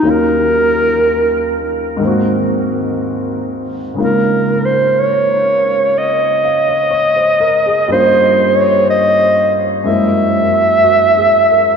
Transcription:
X:1
M:4/4
L:1/16
Q:"Swing" 1/4=61
K:Dblyd
V:1 name="Clarinet"
B6 z8 z2 | B2 c2 d4 e8 | c2 d2 e2 z2 _f8 |]
V:2 name="Upright piano"
z16 | z8 z2 f e d c B A | z12 (3_G2 A2 B2 |]
V:3 name="Upright piano"
[E,,E,_G,DF]8 [A,,E,B,C_G]8 | [D,A,B,EF]16 | [G,,G,B,DF]8 [_G,,_G,A,B,_F]8 |]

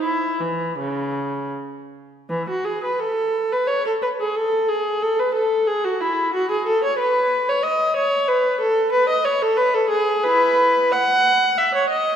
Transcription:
X:1
M:3/4
L:1/16
Q:1/4=90
K:C#m
V:1 name="Viola"
E2 E,2 C,4 z4 | [K:Alyd] E, F G B A3 B c A B G | A2 G2 A B A2 G F E2 | F G A c B3 c d2 c2 |
B2 A2 B d c A B A G2 | [K:E] [EB]4 f4 e c d2 |]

